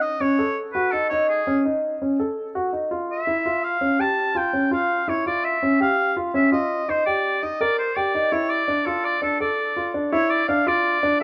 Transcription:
Already playing: D#4
0.02 D#5
0.21 C#4 C#5
0.39 A4
0.73 F#4 B4
0.92 D#4 A4
1.09 D#4 C#5
1.29 G#4
1.47 C#4
1.65 D#4
2.02 C#4
2.20 A4
2.55 F#4
2.73 D#4
2.91 F4
3.12 E5
3.27 E4
3.46 F4
3.64 F5
3.81 C#4
3.99 G4 A5
4.35 F4 G5
4.53 C#4
4.71 F4 F5
5.08 E4 C#5
5.26 F4 D5
5.45 E5
5.63 C#4
5.80 G4 F5
6.17 F4
6.34 C#4 E5
6.52 F4 D#5
6.88 D#4 C5
7.06 G4 D5
7.43 D#4 D#5
7.61 A#4 D5
7.79 C5
7.96 G4 D5
8.15 D#4
8.32 E4 C#5
8.50 D5
8.68 D4
8.86 F4 A4
9.05 D5
9.22 D4 A4
9.40 A4 D5
9.77 F4
9.94 D4
10.12 E4 C#5
10.30 D5
10.48 D4 F5
10.67 F4 D5
11.03 D4

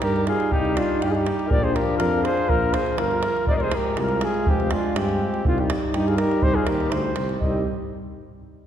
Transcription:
Already playing: G3 D#4
0.02 G2 G4 A#4, davul high
0.16 davul high
0.27 F4 G#4, davul high
0.40 davul high
0.52 C2 D#4 G4, davul low
0.65 davul high
0.75 D4 F4, davul high
0.99 G2 D#4 G4, davul high
1.06 F4
1.11 D#4 G#4
1.15 G4, davul high
1.26 davul high
1.39 davul high
1.47 D4 A#4 D5, davul low
1.52 A#1 F3
1.62 G#4 C5, davul high
1.73 G4 A#4, davul high
1.97 F2 F4 A#4, davul high
2.12 davul high
2.22 G#4 C5, davul high
2.37 davul high
2.49 A#1 F4 A#4, davul low
2.62 davul high
2.74 G#4 C5, davul high
2.86 davul high
2.98 G1 F4 A#4, davul high
3.11 davul high
3.23 davul high
3.36 davul high
3.47 F1 G#3 F4 D5 D#5, davul low
3.51 C5
3.56 A#4 D5
3.60 G#4 C5, davul high
3.72 A#4, davul high
3.77 G4
3.97 C2 A#4, davul high
4.02 F4
4.09 davul high
4.21 F4 G#4, davul high
4.34 davul high
4.46 F1 C4 G4, davul low
4.60 davul high
4.71 F4, davul high
4.75 D4
4.96 G2 C4 G4, davul high
5.09 davul high
5.34 davul high
5.45 C2 G3 C4 D#4 F4, davul low
5.58 D#4 G4, davul high
5.70 davul high
5.94 G2 D#4 G4, davul high
6.08 F4 G#4, davul high
6.17 A#4, davul high
6.21 G4
6.31 davul high
6.42 C2 G4 C5, davul low
6.55 F4 G#4
6.67 D#2 G4 A#4, davul high
6.80 davul high
6.90 D2 G4 C5, davul high
7.16 C2, davul high
7.29 davul high
7.39 C2 G3 C4 D#4 D#5, davul low

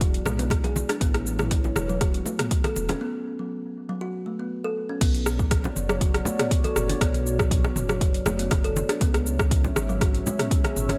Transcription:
Already playing: E1 E4 G#4 D5
0.01 F#4, kick, closed hi-hat, cabasa
0.14 closed hi-hat, cabasa
0.25 B1 G#3, cross-stick, mid tom, low bongo, muted conga, high conga, low conga, cabasa
0.39 B3, closed hi-hat, low bongo, cabasa
0.50 kick, cross-stick, closed hi-hat, muted conga, high conga, cabasa
0.64 G#4, closed hi-hat, low bongo, cabasa
0.76 muted conga, high conga, cabasa
0.89 D4, cross-stick, closed hi-hat, cabasa
1.01 A1 A3 B3 E4 B4 C#5, kick, closed hi-hat, muted conga, cabasa
1.14 cross-stick, closed hi-hat, cabasa
1.26 cabasa
1.39 F#3, cross-stick, mid tom, muted conga, cabasa
1.51 kick, closed hi-hat, low conga, cabasa
1.64 high bongo, low bongo, muted conga, cabasa
1.76 E1, cross-stick, high bongo, low bongo, high conga, low conga, cabasa
1.89 F#3, muted conga, cabasa
2.01 F#4, kick, cross-stick, closed hi-hat, cabasa
2.14 closed hi-hat, cabasa
2.26 A3, high bongo, low bongo, muted conga, cabasa
2.39 B3, cross-stick, closed hi-hat, mid tom, cabasa
2.51 kick, closed hi-hat, muted conga, cabasa
2.64 A4, cross-stick, closed hi-hat, high conga, cabasa
2.76 E1, muted conga, cabasa
2.89 C#4, cross-stick, closed hi-hat, high bongo, low bongo, high conga, low conga, cabasa
3.01 B3
3.39 F#3
3.89 F#3
4.01 F#4
4.26 A3
4.40 B3
4.64 A4
4.89 C#4
5.01 B1 B3 F#4 C#5 D5, kick, closed hi-hat, crash, muted conga, cabasa
5.14 closed hi-hat, cabasa
5.26 cross-stick, cabasa
5.39 F#3, kick, muted conga, cabasa
5.51 kick, cross-stick, closed hi-hat, cabasa
5.64 muted conga, low conga, cabasa
5.76 F#1, high conga, cabasa
5.89 F#3, cross-stick, muted conga, cabasa
6.01 F#4, kick, closed hi-hat, cabasa
6.14 cross-stick, closed hi-hat, cabasa
6.25 A3, muted conga, low conga, cabasa
6.39 B3, cross-stick, closed hi-hat, mid tom, cabasa
6.51 kick, closed hi-hat, muted conga, cabasa
6.64 A4, closed hi-hat, high conga, cabasa
6.76 F#1, cross-stick, mid tom, muted conga, cabasa
6.89 D4, closed hi-hat, high conga, cabasa
7.01 B1 B3, kick, cross-stick, closed hi-hat, muted conga, cabasa
7.14 closed hi-hat, high conga, cabasa
7.26 cabasa
7.39 F#3, kick, cross-stick, muted conga, cabasa
7.51 kick, closed hi-hat, cabasa
7.64 cross-stick, muted conga, low conga, cabasa
7.76 F#1, mid tom, high conga, cabasa
7.89 F#3, cross-stick, mid tom, muted conga, cabasa
8.01 F#4, kick, closed hi-hat, cabasa
8.14 closed hi-hat, cabasa
8.26 F#1 A3, cross-stick, muted conga, high conga, low conga, cabasa
8.39 B3, closed hi-hat, cabasa
8.51 kick, cross-stick, closed hi-hat, muted conga, high conga, low conga, cabasa
8.64 A4, closed hi-hat, cabasa
8.76 muted conga, high conga, cabasa
8.89 D4, cross-stick, closed hi-hat, cabasa
9.01 C#2 B3 C#4 G#4 C#5 E5, kick, closed hi-hat, muted conga, cabasa
9.14 cross-stick, closed hi-hat, cabasa
9.26 cabasa
9.39 F#3, kick, cross-stick, muted conga, cabasa
9.51 kick, closed hi-hat, cabasa
9.64 muted conga, low conga, cabasa
9.76 G#1, cross-stick, high conga, cabasa
9.89 F#3, muted conga, cabasa
10.01 F#4, kick, cross-stick, closed hi-hat, cabasa
10.15 closed hi-hat, cabasa
10.26 G#3, muted conga, low conga, cabasa
10.39 B3, cross-stick, closed hi-hat, mid tom, cabasa
10.51 kick, closed hi-hat, muted conga, cabasa
10.64 G#4, cross-stick, closed hi-hat, high conga, cabasa
10.76 G#1, mid tom, muted conga, cabasa
10.89 C#4, cross-stick, closed hi-hat, high conga, cabasa

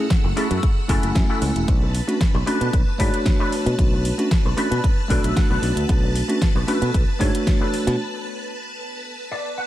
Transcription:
Already playing: A3 F#5 E6
0.10 kick, snare, closed hi-hat
0.24 F#1, muted clean electric guitar stroke
0.36 A3 C#4 E4 F#4 G#4 A4, open hi-hat
0.51 F#2, closed hi-hat
0.63 kick, closed hi-hat
0.88 F#1 A3 C#4 E4 F#4 A4 G#5, kick, open hi-hat
1.03 F#1, closed hi-hat
1.15 F#2, kick, snare, closed hi-hat
1.29 E4 F#4 A4
1.42 C#2, open hi-hat
1.55 E1, muted clean electric guitar stroke, closed hi-hat
1.68 B1 B4 A5, kick, closed hi-hat
1.82 muted clean electric guitar stroke
1.95 open hi-hat
2.07 A3 C#4 D4 F#4, closed hi-hat
2.21 kick, snare, closed hi-hat
2.34 B1, muted clean electric guitar stroke
2.46 A3 C#4 D4 F#4 A4 B4, open hi-hat
2.61 B2, closed hi-hat
2.73 B1, kick, closed hi-hat
2.98 G#2 A3 D4 F#4 A4 B4 C#5, kick, open hi-hat
3.14 closed hi-hat
3.26 kick, snare, closed hi-hat
3.39 D4 A4 B4
3.52 open hi-hat
3.66 B2, muted clean electric guitar stroke, closed hi-hat
3.79 B1, kick, closed hi-hat
3.92 muted clean electric guitar stroke
4.05 open hi-hat
4.18 A3 C#4 D4 F#4, closed hi-hat
4.31 kick, snare, closed hi-hat
4.45 B1, muted clean electric guitar stroke
4.57 A3 C#4 D4 F#4 A4 B4, open hi-hat
4.71 B2, closed hi-hat
4.84 kick, closed hi-hat
5.08 B1 A3 D4 F#4 A4 B4 D5, kick, open hi-hat
5.24 B1 E5, closed hi-hat
5.36 F#5, kick, snare, closed hi-hat
5.50 B1 D4 A4 B4
5.62 B1, open hi-hat
5.76 D2, muted clean electric guitar stroke, closed hi-hat
5.89 B1, kick, closed hi-hat
6.03 muted clean electric guitar stroke
6.16 open hi-hat
6.28 A3 C#4 D4 F#4, closed hi-hat
6.42 kick, snare, closed hi-hat
6.55 B1, muted clean electric guitar stroke
6.67 A3 C#4 D4 F#4 A4 B4, open hi-hat
6.82 B2, closed hi-hat
6.94 B1, kick, closed hi-hat
7.19 G#2 A3 D4 F#4 A4 C#5, kick, open hi-hat
7.35 closed hi-hat
7.47 kick, snare, closed hi-hat
7.61 D4 A4 B4
7.74 open hi-hat
7.87 B2, muted clean electric guitar stroke, closed hi-hat
9.31 D5
9.58 F#5

